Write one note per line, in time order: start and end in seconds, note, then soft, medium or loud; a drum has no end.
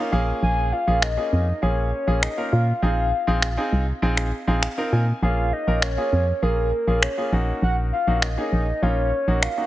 0.00 0.11 A#3 medium
0.00 0.11 C#4 medium
0.00 0.13 D#4 medium
0.00 0.11 F4 medium
0.12 0.33 A#1 medium
0.12 0.72 A#3 medium
0.12 0.72 C#4 medium
0.12 0.73 F4 medium
0.12 0.73 G#4 loud
0.43 0.72 A#1 loud
0.43 0.74 G#5 loud
0.72 1.04 F5 loud
0.87 1.18 A#1 medium
0.87 1.05 A#3 medium
0.87 1.05 C#4 medium
0.87 1.05 F4 medium
0.87 1.05 G#4 medium
1.02 1.64 D#5 loud
1.02 finger snap loud
1.17 1.43 A#3 medium
1.17 1.43 C#4 medium
1.17 1.43 F4 medium
1.17 1.43 G#4 medium
1.33 1.53 F2 medium
1.62 1.93 A#1 medium
1.62 1.88 A#3 medium
1.62 1.88 C#4 medium
1.62 1.88 F4 medium
1.62 1.89 G#4 medium
1.62 2.22 C#5 medium
2.07 2.28 A#1 medium
2.07 2.25 A#3 medium
2.07 2.25 C#4 medium
2.07 2.25 F4 medium
2.07 2.25 G#4 medium
2.22 2.54 D#5 loud
2.22 finger snap loud
2.37 2.63 A#3 medium
2.37 2.63 C#4 medium
2.37 2.64 F4 medium
2.37 2.64 A#4 medium
2.52 2.73 A#2 medium
2.52 4.32 F5 loud
2.82 3.12 A#1 loud
2.82 3.08 C4 medium
2.82 3.08 D#4 medium
2.82 3.09 F4 medium
2.82 3.09 G#4 medium
3.27 3.58 A#1 medium
3.27 3.45 C4 medium
3.27 3.45 D#4 medium
3.27 3.45 F4 medium
3.27 3.45 G#4 medium
3.42 finger snap loud
3.57 3.83 C4 medium
3.57 3.84 D#4 medium
3.57 3.84 F4 medium
3.57 3.84 G#4 loud
3.73 3.92 C2 medium
4.02 4.32 A#1 medium
4.02 4.28 C4 medium
4.02 4.28 D#4 medium
4.02 4.28 F4 medium
4.02 4.29 G#4 medium
4.17 finger snap medium
4.47 4.68 A#1 medium
4.47 4.65 C4 medium
4.47 4.65 D#4 medium
4.47 4.65 F4 medium
4.47 4.65 G#4 medium
4.63 4.90 F5 medium
4.63 finger snap loud
4.78 5.04 C4 medium
4.78 5.04 D#4 medium
4.78 5.04 F4 medium
4.78 5.04 A#4 medium
4.93 5.13 A#2 medium
4.93 5.21 G#5 medium
5.22 5.52 A#1 loud
5.22 5.48 A#3 medium
5.22 5.49 C#4 medium
5.22 5.49 F4 medium
5.22 5.49 G#4 medium
5.22 5.54 F5 loud
5.53 5.84 D#5 loud
5.67 5.97 A#1 medium
5.67 5.85 A#3 medium
5.67 5.85 C#4 medium
5.67 5.85 F4 medium
5.67 5.85 A#4 medium
5.82 6.44 C#5 loud
5.82 finger snap loud
5.97 6.23 A#3 medium
5.97 6.24 C#4 medium
5.97 6.24 F4 medium
5.97 6.24 G#4 medium
6.13 6.33 F2 medium
6.42 6.72 A#1 medium
6.42 6.68 A#3 medium
6.42 6.68 C#4 medium
6.42 6.69 F4 medium
6.42 6.69 G#4 medium
6.42 7.04 A#4 medium
6.87 7.07 A#1 medium
6.87 7.05 A#3 medium
6.87 7.05 C#4 medium
6.87 7.05 F4 medium
6.87 7.05 G#4 medium
7.03 7.33 C#5 medium
7.03 finger snap loud
7.18 7.31 A#3 medium
7.18 7.31 C#4 medium
7.18 7.33 F4 medium
7.18 7.33 G#4 medium
7.32 7.52 A#1 medium
7.32 7.92 A#3 medium
7.32 7.93 C#4 medium
7.32 7.93 D#4 medium
7.32 7.93 F#4 medium
7.62 7.92 A#1 loud
7.62 7.76 F#5 loud
7.92 8.24 F5 loud
8.07 8.37 A#1 medium
8.07 8.25 A#3 medium
8.07 8.25 C#4 medium
8.07 8.25 D#4 medium
8.07 8.25 F#4 medium
8.22 8.84 D#5 loud
8.22 finger snap loud
8.38 8.63 A#3 medium
8.38 8.64 C#4 medium
8.38 8.64 D#4 medium
8.38 8.64 G#4 medium
8.53 8.72 A#1 medium
8.82 9.12 A#1 loud
8.82 9.08 A#3 medium
8.82 9.09 C#4 medium
8.82 9.09 D#4 medium
8.82 9.09 F4 medium
8.82 9.44 C#5 medium
9.28 9.48 A#1 medium
9.28 9.45 A#3 medium
9.28 9.45 C#4 medium
9.28 9.45 D#4 medium
9.28 9.45 F#4 medium
9.42 9.66 F5 medium
9.42 finger snap loud
9.57 9.66 A#3 medium
9.57 9.66 C#4 medium
9.57 9.66 D#4 medium
9.57 9.66 F#4 medium